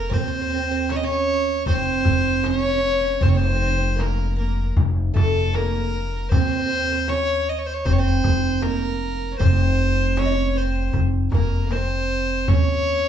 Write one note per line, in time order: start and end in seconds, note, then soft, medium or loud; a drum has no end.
0.00 0.12 A#3 medium
0.00 0.15 A#4 medium
0.10 1.63 D#2 medium
0.10 0.18 C4 medium
0.10 0.94 C5 medium
0.10 frame drum medium
0.10 darbuka dum medium
0.19 0.27 C4 medium
0.28 0.34 C4 medium
0.28 darbuka ka soft
0.35 0.40 C4 soft
0.42 0.48 C4 medium
0.49 0.56 C4 medium
0.49 darbuka ka soft
0.58 0.65 C4 medium
0.71 0.90 C4 medium
0.89 1.02 C#4 medium
0.89 0.97 C#5 medium
0.89 darbuka tek medium
0.89 frame drum medium
0.96 1.05 D#5 medium
1.03 1.66 C#4 medium
1.03 1.67 C#5 loud
1.09 darbuka ka soft
1.29 darbuka ka soft
1.66 2.03 F1 medium
1.66 2.43 C4 medium
1.66 2.47 C5 medium
1.66 frame drum medium
1.66 darbuka dum medium
1.87 darbuka ka soft
2.05 3.18 F1 medium
2.05 darbuka dum medium
2.05 frame drum medium
2.44 2.50 C#4 medium
2.44 3.24 C#5 medium
2.44 darbuka tek medium
2.44 frame drum medium
2.51 2.58 C#4 medium
2.59 2.65 C#4 medium
2.66 2.74 C#4 medium
2.75 2.80 C#4 medium
2.82 2.86 C#4 medium
2.82 darbuka ka soft
2.87 2.96 C#4 medium
3.01 3.20 C#4 medium
3.01 darbuka ka soft
3.21 4.73 F1 medium
3.21 3.34 C4 medium
3.21 3.30 C5 medium
3.21 frame drum medium
3.21 darbuka dum medium
3.29 3.38 C#5 medium
3.35 3.40 C4 medium
3.35 4.02 C5 medium
3.41 3.48 C4 soft
3.41 darbuka ka soft
3.49 3.54 C4 medium
3.55 3.61 C4 medium
3.62 3.69 C4 medium
3.62 darbuka ka soft
3.70 3.77 C4 medium
3.78 3.87 C4 medium
3.96 4.35 A#3 medium
3.96 darbuka tek medium
3.96 frame drum medium
4.01 4.38 A#4 medium
4.19 darbuka ka soft
4.37 4.73 A#3 medium
4.37 4.74 A#4 medium
4.37 darbuka ka soft
4.77 5.12 F1 medium
4.77 frame drum medium
4.77 darbuka dum medium
4.96 darbuka ka soft
5.14 6.27 F1 medium
5.14 5.53 A3 medium
5.14 5.57 A4 medium
5.14 frame drum medium
5.14 darbuka dum medium
5.53 6.33 A#3 medium
5.53 6.31 A#4 medium
5.53 darbuka tek medium
5.53 frame drum medium
5.94 darbuka ka soft
6.12 darbuka ka soft
6.32 7.82 D#2 medium
6.32 6.39 C4 medium
6.32 7.10 C5 loud
6.32 darbuka dum medium
6.32 frame drum medium
6.40 6.46 C4 soft
6.47 6.54 C4 medium
6.47 darbuka ka soft
6.55 6.60 C4 soft
6.61 6.68 C4 soft
6.70 6.76 C4 soft
6.70 darbuka ka soft
6.78 6.83 C4 soft
6.85 6.91 C4 soft
6.92 7.00 C4 soft
7.08 7.46 C#4 medium
7.08 7.50 C#5 medium
7.08 darbuka tek medium
7.08 frame drum medium
7.29 darbuka ka soft
7.48 7.60 D#5 medium
7.48 darbuka ka soft
7.58 7.68 C#5 medium
7.66 7.75 C5 medium
7.73 7.86 C#5 medium
7.85 8.22 F1 medium
7.85 7.97 C4 medium
7.85 7.94 C5 medium
7.85 frame drum medium
7.85 darbuka dum medium
7.93 8.01 C#5 medium
7.98 8.64 C4 medium
7.98 8.64 C5 medium
8.05 darbuka ka soft
8.24 9.37 F1 medium
8.24 darbuka dum medium
8.24 frame drum medium
8.45 darbuka ka soft
8.62 9.35 A#3 medium
8.62 9.38 A#4 medium
8.62 darbuka tek medium
8.62 frame drum medium
9.21 darbuka ka soft
9.32 9.39 C#4 soft
9.39 10.91 F1 medium
9.39 10.16 C4 medium
9.39 10.20 C5 medium
9.39 frame drum medium
9.39 darbuka dum medium
9.60 darbuka ka soft
10.17 10.24 C#4 medium
10.17 10.58 C#5 medium
10.17 darbuka tek medium
10.17 frame drum medium
10.25 10.32 D#4 medium
10.32 10.56 C#4 medium
10.55 10.92 C4 medium
10.55 10.95 C5 medium
10.55 darbuka ka soft
10.93 11.30 F1 medium
10.93 darbuka dum medium
10.93 frame drum medium
11.13 darbuka ka soft
11.32 12.46 F1 medium
11.32 11.63 A#3 medium
11.32 11.73 A#4 medium
11.32 darbuka dum medium
11.32 frame drum medium
11.67 11.73 A#3 soft
11.67 darbuka tek medium
11.71 12.49 C4 medium
11.71 12.49 C5 medium
11.71 frame drum medium
12.10 darbuka ka soft
12.29 darbuka ka soft
12.48 13.09 D#2 medium
12.48 13.09 C#4 medium
12.48 13.09 C#5 medium
12.48 darbuka dum medium
12.48 frame drum medium
12.68 darbuka ka soft
12.88 darbuka ka soft